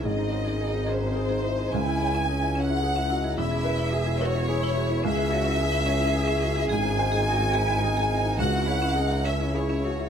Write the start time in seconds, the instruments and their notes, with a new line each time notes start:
Already playing: ambient pad G#4
0.03 double bass G#1, felt piano G#2, cello C4, ambient pad C4 D#5, marimba G#4, violin section D#5
0.18 felt piano D#4, marimba C5
0.32 felt piano C5, marimba D#5
0.45 felt piano D#4, marimba G#4
0.60 cello D#4, felt piano G#4
0.73 felt piano D#4, marimba C5
0.87 cello C#4, marimba G#4, violin section C5, felt piano C5
1.00 felt piano D#4, marimba D#5
1.15 cello C4, felt piano G#4
1.29 felt piano D#4, marimba G#4
1.43 cello D#4, felt piano E4, marimba C5
1.58 felt piano D#4, marimba D#5
1.72 double bass C#2, felt piano C#2, ambient pad C#4 E5, marimba C#4, cello E4, violin section G#5
1.87 marimba E4, felt piano E4
2.01 marimba G#4, felt piano C#5
2.15 marimba C#4, felt piano E4
2.28 cello C#4, felt piano G#4
2.42 marimba E4, felt piano E4
2.55 marimba C#4, felt piano C#5, violin section F#5
2.69 felt piano E4, marimba G#4
2.82 cello C#4, felt piano G#4
2.96 marimba C#4, felt piano E4
3.10 cello D#4, marimba E4, felt piano F#4
3.24 felt piano E4, marimba G#4
3.36 double bass E1, felt piano E2, ambient pad B3 G#4, marimba E4, cello E4, violin section E5
3.51 felt piano E4, marimba G#4
3.64 felt piano B4, marimba B4
3.79 felt piano E4, marimba E4
3.93 cello G#4, felt piano G#4
4.06 felt piano E4, marimba G#4
4.21 marimba E4, cello F#4, felt piano B4, violin section C#5
4.34 felt piano E4, marimba B4
4.48 cello E4, felt piano G#4
4.63 felt piano E4, marimba E4
4.76 felt piano F#4, marimba G#4
4.90 felt piano E4, marimba B4
5.03 double bass C#2, felt piano C#2, marimba C#4, ambient pad C#4, cello G#4, violin section E5
5.17 marimba E4, felt piano E4
5.31 cello F#4, marimba G#4, felt piano C#5
5.44 marimba C#4, felt piano E4
5.60 felt piano G#4, cello G#4
5.72 marimba E4, felt piano E4
5.86 marimba C#4, felt piano C#5
6.00 felt piano E4, marimba G#4
6.15 felt piano G#4
6.28 marimba C#4, felt piano E4
6.42 marimba E4, felt piano F#4
6.56 felt piano E4, marimba G#4
6.68 double bass G#1, felt piano G#2, ambient pad C4 D#5, marimba G#4, violin section G#5
6.83 felt piano D#4, marimba C5
6.97 felt piano C5, marimba D#5
7.12 felt piano D#4, marimba G#4
7.26 cello F#4, felt piano G#4
7.40 felt piano D#4, marimba C5
7.54 cello E4, marimba G#4, felt piano C5
7.68 felt piano D#4, marimba D#5
7.83 cello D#4, felt piano G#4
7.97 felt piano D#4, marimba G#4
8.11 felt piano E4, marimba C5
8.25 felt piano D#4, marimba D#5
8.38 double bass C#2, felt piano C#2, marimba C#4, ambient pad C#4 G#4 E5, cello F#4, violin section F#5
8.54 marimba E4, felt piano E4
8.67 cello E4, marimba G#4, felt piano C#5
8.82 marimba C#4, felt piano E4
8.95 cello D#4, felt piano G#4
9.11 felt piano E4, marimba E4
9.24 cello C#4, marimba C#4, felt piano C#5, violin section E5
9.40 felt piano E4, marimba G#4
9.54 cello E4, felt piano G#4, violin section C#5
9.69 marimba C#4, felt piano E4
9.84 marimba E4, felt piano F#4, cello F#4
9.99 felt piano E4, marimba G#4